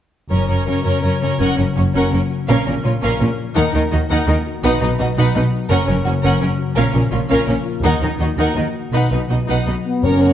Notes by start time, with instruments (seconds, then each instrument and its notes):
0.30 double bass section F#1, harp F#2, cello section F#2, viola section C#4, violin section A#4 C#5
0.48 cello section F#2, harp C#3, viola section C#4, violin section A#4 C#5
0.66 cello section F#2, viola section C#4, harp F#4, violin section A#4 C#5
0.84 cello section F#2, viola section C#4, violin section A#4 C#5, harp A#4
1.02 cello section F#2, viola section C#4, harp F#4, violin section A#4 C#5
1.20 cello section F#2, harp C#3, viola section C#4, violin section A#4 C#5
1.39 double bass section F#1, harp F#2, cello section F#2, viola section C#4, violin section A#4 F#5
1.57 double bass section F#1, cello section F#2, harp C#3, viola section C#4, violin section C#4 A#4
1.76 double bass section F#1, cello section F#2, harp A#3, viola section C#4, violin section F#4 C#5
1.94 double bass section F#1, cello section F#2, viola section C#4, harp F#4, violin section A#4 F#5
2.12 double bass section F#1, cello section F#2, viola section C#4, violin section C#4 A#4, harp C#5
2.30 harp F#4
2.48 double bass section A#1, cello section A#2, harp A#2, viola section C#4, violin section A#4 F5
2.66 double bass section A#1, cello section A#2, harp F3, viola section C#4, violin section C#4 A#4
2.84 double bass section A#1, cello section A#2, harp A#3, viola section C#4, violin section F4 C#5
3.02 double bass section A#1, cello section A#2, viola section C#4, harp F4, violin section A#4 F5
3.20 double bass section A#1, cello section A#2, viola section C#4, violin section C#4 A#4, harp C#5
3.38 harp F4
3.55 double bass section D#2, harp D#3, cello section D#3, viola section D#4, violin section A#4 F#5
3.73 double bass section D#2, cello section D#3, harp D#4, viola section D#4, violin section D#4 A#4
3.92 double bass section D#2, cello section D#3, harp A#3, viola section D#4, violin section F#4 D#5
4.10 double bass section D#2, cello section D#3, viola section D#4, harp F#4, violin section A#4 F#5
4.27 double bass section D#2, cello section D#3, viola section D#4, violin section D#4 A#4
4.46 harp F#4
4.63 double bass section B1, cello section B2, harp B2, viola section D#4, violin section B4 F#5
4.81 double bass section B1, cello section B2, harp F#3, viola section D#4, violin section D#4 B4
4.99 double bass section B1, cello section B2, harp B3, viola section D#4, violin section F#4 D#5
5.17 double bass section B1, cello section B2, viola section D#4, harp F#4, violin section B4 F#5
5.34 double bass section B1, cello section B2, viola section D#4, violin section D#4 B4
5.52 harp F#4
5.70 double bass section F#1, cello section F#2, harp F#2, viola section C#4, violin section A#4 F#5
5.87 double bass section F#1, cello section F#2, harp C#3, violin section C#4 A#4, viola section C#4
6.05 double bass section F#1, cello section F#2, harp A#3, viola section C#4, violin section F#4 C#5
6.22 double bass section F#1, cello section F#2, viola section C#4, harp F#4, violin section A#4 F#5
6.40 double bass section F#1, cello section F#2, violin section C#4 A#4, viola section C#4, harp C#5
6.58 harp F#4
6.75 double bass section A#1, harp A#2, cello section A#2, viola section C#4, violin section A#4 F5
6.94 double bass section A#1, cello section A#2, harp F3, viola section C#4, violin section C#4 A#4
7.11 double bass section A#1, cello section A#2, harp A#3, viola section C#4, violin section F4 C#5
7.29 double bass section A#1, cello section A#2, viola section C#4, harp F4, violin section A#4 F5
7.46 double bass section A#1, cello section A#2, violin section C#4 A#4, viola section C#4, harp C#5
7.65 harp F4
7.83 double bass section D#2, harp D#3, cello section D#3, viola section D#4, violin section A#4 F#5
8.02 double bass section D#2, cello section D#3, harp D#4, viola section D#4, violin section D#4 A#4
8.19 double bass section D#2, cello section D#3, harp A#3, viola section D#4, violin section F#4 D#5
8.37 double bass section D#2, cello section D#3, viola section D#4, harp F#4, violin section A#4 F#5
8.56 double bass section D#2, cello section D#3, viola section D#4, violin section D#4 A#4
8.74 harp F#4
8.92 double bass section B1, harp B2, cello section B2, viola section D#4, violin section B4 F#5
9.11 double bass section B1, cello section B2, harp F#3, viola section D#4, violin section D#4 B4
9.29 double bass section B1, cello section B2, harp B3, viola section D#4, violin section F#4 D#5
9.48 double bass section B1, cello section B2, viola section D#4, harp F#4, violin section B4 F#5
9.66 double bass section B1, cello section B2, viola section D#4, violin section D#4 B4
9.85 french horn section B3, harp F#4
10.03 double bass section F#1, harp F#2, timpani F#2, cello section F#2, french horn section C#4, violin section A#4 C#5 A#5, viola section A#4
10.21 harp C#3, violin section A#4 C#5 F#5